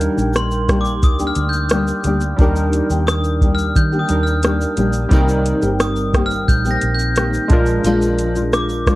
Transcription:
Already playing: D#3 G3 A#3 D4 D#4 G4 A#4
0.01 closed hi-hat, shaker
0.17 A#1 A#3 D4 G4, shaker
0.33 cross-stick, closed hi-hat, shaker
0.36 C6, shaker
0.51 shaker
0.68 G3 A#3 D4 G4, kick, cross-stick, closed hi-hat, shaker
0.81 D6
0.85 shaker
1.03 D2 D#6, kick, closed hi-hat, shaker
1.19 A#3 D4 G4, shaker
1.27 F6
1.36 D2, closed hi-hat, shaker
1.49 G6, shaker
1.54 shaker
1.70 G3 A#3 D4 G4, cross-stick, closed hi-hat, shaker
1.88 shaker
2.04 D2 G3 A#3 D4 G4, closed hi-hat, shaker
2.21 shaker
2.36 D#2 D#3 G3 A#3 D4 D#4 G4, kick, closed hi-hat, shaker
2.41 A#4
2.56 shaker
2.72 closed hi-hat, shaker
2.90 D#2 A#3 D4 G4, shaker
3.07 D#6, cross-stick, closed hi-hat, shaker
3.24 shaker
3.41 G3 A#3 D4 G4, kick, closed hi-hat, shaker
3.55 F6, shaker
3.60 shaker
3.76 D#3 G6, kick, closed hi-hat, shaker
3.92 A#3 D4 G4, shaker
3.99 D#6
4.08 D#2 G3 D4 D#4 A#4, closed hi-hat, shaker
4.23 F6, shaker
4.43 G3 A#3 D4 G4, cross-stick, closed hi-hat, shaker
4.61 shaker
4.76 A#1 G3 A#3 D4 G4, closed hi-hat, shaker
4.93 shaker
4.95 shaker
5.09 C2 C3 D#3 G3 A#3 C4 D#4 G4, kick, closed hi-hat, shaker
5.13 A#4, shaker
5.29 shaker
5.46 closed hi-hat, shaker
5.62 G1 A#3 C4 G4, shaker
5.80 D#6, cross-stick, closed hi-hat, shaker
5.96 shaker
6.13 D#3 A#3 C4 G4, kick, cross-stick, closed hi-hat, shaker
6.26 F6
6.30 shaker
6.33 shaker
6.48 A#1 G6, kick, closed hi-hat, shaker
6.65 A#3 C4 G4, shaker
6.70 A#6
6.81 A#1, closed hi-hat, shaker
6.94 G6
6.99 shaker
7.16 D#3 A#3 C4 G4, cross-stick, closed hi-hat, shaker
7.33 shaker
7.48 A#1 F3 G#3 D4 F4, kick, closed hi-hat, shaker
7.52 F4 A#4
7.66 shaker
7.68 shaker
7.84 A#1 A#2 F3 G#3 D4 F4, closed hi-hat, shaker
8.02 shaker
8.19 closed hi-hat, shaker
8.36 G#3 D4 F4, shaker
8.52 D6, cross-stick, closed hi-hat, shaker
8.69 shaker
8.86 F3 G#3 D4 F4, kick, cross-stick, closed hi-hat, shaker

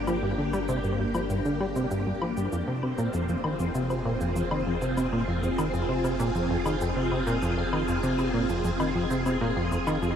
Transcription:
Already playing: G1 A#3 D4 G4
0.07 F3, low woodblock, shaker
0.23 G2
0.38 D3
0.53 G3, low woodblock, shaker
0.69 C3, shaker
0.84 G2, shaker
0.99 G2
1.15 F3, low woodblock, shaker
1.30 G2, shaker
1.45 D3, shaker
1.60 G3, low woodblock
1.76 C3, shaker
1.91 G2, shaker
2.06 G2
2.22 F3, low woodblock
2.37 G2, shaker
2.52 F1 F2 C4, shaker
2.68 C3
2.72 F4
2.83 C3, low woodblock
2.98 A#2, shaker
3.12 F2 G#4, shaker
3.29 F2, shaker
3.44 D#3, low woodblock
3.59 F2, shaker
3.75 C3, shaker
3.90 C3, low woodblock, shaker
4.05 A#2
4.21 F2, shaker
4.36 F2, shaker
4.51 D#3, low woodblock
4.67 F2
4.82 C3, shaker
4.97 C3, low woodblock, shaker
5.12 A#2
5.28 F2
5.43 F2, shaker
5.58 D#3, low woodblock, shaker
5.74 F2, shaker
5.89 C3
6.04 C3, low woodblock, shaker
6.20 A#2, shaker
6.35 F2, shaker
6.50 F2
6.66 D#3, low woodblock, shaker
6.81 F2, shaker
6.96 C3
7.12 C3, low woodblock
7.27 A#2, shaker
7.42 F2, shaker
7.58 F2
7.73 D#3, low woodblock
7.88 F2, shaker
8.03 C3, shaker
8.19 C3, low woodblock, shaker
8.34 A#2
8.49 F2, shaker
8.65 F2, shaker
8.80 D#3, low woodblock, shaker
8.95 F2
9.11 C3, shaker
9.26 C3, low woodblock, shaker
9.41 A#2
9.56 F2
9.72 F2, shaker
9.87 D#3, low woodblock, shaker
10.02 F2, shaker

